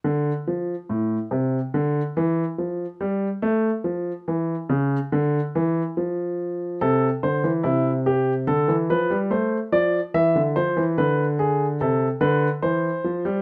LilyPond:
<<
  \new Staff \with { instrumentName = "Grand piano" } { \time 4/4 \key a \phrygian \tempo 4 = 71 d8 f8 a,8 c8 d8 e8 f8 g8 | a8 f8 e8 cis8 d8 e8 f4 | a'8 c''8 e'8 g'8 a'8 b'8 c''8 d''8 | e''8 c''8 b'8 gis'8 a'8 b'8 c''4 | }
  \new Staff \with { instrumentName = "Grand piano" } { \clef bass \time 4/4 \key a \phrygian r1 | r1 | c8 d16 e16 c4 d16 e16 f16 g16 a8 f8 | e16 d16 f16 e16 d4 c8 d8 e8 f16 g16 | }
>>